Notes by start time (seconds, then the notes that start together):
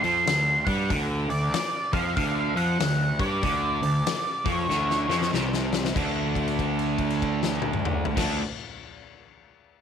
0.02 F2 F3 C6, open hi-hat
0.27 D2 D3, snare, open hi-hat
0.65 G2 G3 F#5, kick, open hi-hat
0.90 D2 D3, kick, open hi-hat
1.29 D2 D3 D5, open hi-hat
1.54 D5, snare, open hi-hat
1.93 F2 F3 F5, kick, open hi-hat
2.17 D2 D3 F5, kick, open hi-hat
2.55 F2 F3 F#5, open hi-hat
2.80 D2 D3, snare, open hi-hat
3.19 G2 G3 D5, kick, open hi-hat
3.43 D2 D3, kick, open hi-hat
3.82 D2 D3, open hi-hat
4.06 snare, open hi-hat
4.45 F2 F3, kick, open hi-hat
4.52 C#5
4.69 D2 D3, snare
4.90 snare
5.08 F2 F3, snare
5.22 snare
5.32 C2 C3, snare
5.53 snare
5.73 snare
5.85 snare
5.95 D2 D3 A3, kick, crash
5.99 D4
6.35 kick, crash
6.48 crash
6.59 kick, crash
6.79 crash
6.98 kick, crash
7.10 crash
7.22 kick, crash
7.43 snare
7.62 high tom
7.73 mid tom
7.85 mid tom
8.05 floor tom
8.16 D2 D3 A3 D4, kick, snare, crash